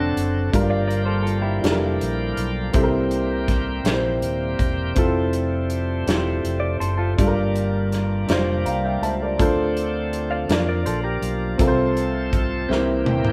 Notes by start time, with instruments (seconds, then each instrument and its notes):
Already playing: fingered electric bass F1, upright piano D3 C4 D4 F#4 A4, tonewheel organ F#3 C4 D4 A4, clean electric guitar D4 F#4
0.17 fingered electric bass F#1, closed hi-hat
0.52 fingered electric bass G1, upright piano G2 D4 F4 G4 A#4, tonewheel organ F3 A#3 G4, kick, closed hi-hat
0.70 clean electric guitar D5 F5
0.88 clean electric guitar A#4 D5, closed hi-hat
1.05 clean electric guitar A4 C5
1.22 clean electric guitar F4 A4
1.27 closed hi-hat
1.42 clean electric guitar E4 G4
1.61 fingered electric bass F1, upright piano F3 D4 G4 A4, closed hi-hat
1.65 snare
1.71 upright piano A#4
2.01 fingered electric bass A#1, closed hi-hat
2.37 fingered electric bass B1, closed hi-hat
2.73 fingered electric bass C2, upright piano C3 C4 E4 G4 A4, tonewheel organ G3 A#3 C4, kick, closed hi-hat
2.83 upright piano A#4
3.11 closed hi-hat
3.48 kick, snare, closed hi-hat
3.84 fingered electric bass A#1, upright piano C4 E4 G4 A#4, snare, closed hi-hat
3.94 upright piano C5
4.21 fingered electric bass D#1, closed hi-hat
4.59 fingered electric bass E1, kick, closed hi-hat
4.95 fingered electric bass F1, tonewheel organ A3, upright piano C4 E4 F4 A4, kick, closed hi-hat
5.33 closed hi-hat
5.70 closed hi-hat
6.06 fingered electric bass E1, upright piano C4 E4 F4 G4, snare, closed hi-hat
6.44 fingered electric bass F1, closed hi-hat
6.60 clean electric guitar D5
6.80 fingered electric bass F#1, clean electric guitar A4 C5, closed hi-hat
6.98 clean electric guitar F4 A4
7.17 fingered electric bass G1, upright piano G2 D4 F4 G4, tonewheel organ D4, kick, closed hi-hat
7.21 tonewheel organ G3 A#3, upright piano A4
7.27 upright piano A#4
7.56 closed hi-hat
7.92 snare, closed hi-hat
8.26 fingered electric bass F1, upright piano D4 F4 G4, snare, closed hi-hat
8.31 upright piano C5
8.65 fingered electric bass C2, upright piano F5 G5 A#5, closed hi-hat
8.84 upright piano E5 G5
9.01 fingered electric bass C#2, upright piano C5 E5 A5, closed hi-hat
9.22 upright piano A#4 D5
9.38 fingered electric bass D2, upright piano D3 D4 F4 A4 C5, tonewheel organ A3 C4, kick, closed hi-hat
9.77 closed hi-hat
10.13 closed hi-hat
10.31 clean electric guitar D5 F5
10.48 fingered electric bass F2, tonewheel organ F3 A#3, upright piano D4 F4 A#4 D5, snare, closed hi-hat
10.69 clean electric guitar A#4 D5
10.86 fingered electric bass A#1, clean electric guitar A4 C5, closed hi-hat
11.04 clean electric guitar G4 A#4
11.22 fingered electric bass B1, closed hi-hat
11.58 fingered electric bass C2, upright piano C3 C4 F4 A4 A#4, tonewheel organ F3 A3 C4 A4, kick, closed hi-hat
11.68 upright piano C5
11.97 closed hi-hat
12.33 kick, closed hi-hat
12.69 fingered electric bass C2, upright piano C3 C4 E4 G4 A#4, tonewheel organ E3 A#3 G4, snare
13.06 fingered electric bass D#1, upright piano G5, high tom
13.25 mid tom